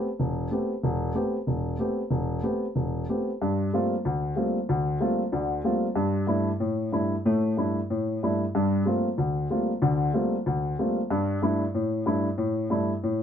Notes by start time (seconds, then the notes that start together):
0.20 E1
0.51 A3 B3 C4 G4
0.83 E1
1.15 A3 B3 C4 G4
1.47 E1
1.79 A3 B3 C4 G4
2.11 E1
2.43 A3 B3 C4 G4
2.76 E1
3.09 A3 B3 C4 G4
3.42 G2
3.73 G3 A3 A#3 C4 F4
4.05 D2
4.36 G3 A3 A#3 C4 F4
4.69 D2
5.00 G3 A3 A#3 C4 F4
5.32 D2 D3
5.64 G3 A3 A#3 C4 F4
5.96 G2
6.27 G2 A3 D4 E4
6.60 A2
6.92 G2 A3 D4 E4
7.26 A2 A3
7.57 G2 A3 D4 E4
7.90 A2
8.23 G2 A3 D4 E4
8.55 G2 G3
8.86 G3 A3 A#3 C4 F4
9.18 D2
9.50 G3 A3 A#3 C4 F4
9.82 D2 D3
10.14 G3 A3 A#3 C4 F4
10.46 D2
10.79 G3 A3 A#3 C4 F4
11.10 G2 G3
11.42 G2 A3 D4 E4
11.75 A2
12.06 G2 A3 D4 E4
12.38 A2
12.70 G2 A3 D4 E4
13.04 A2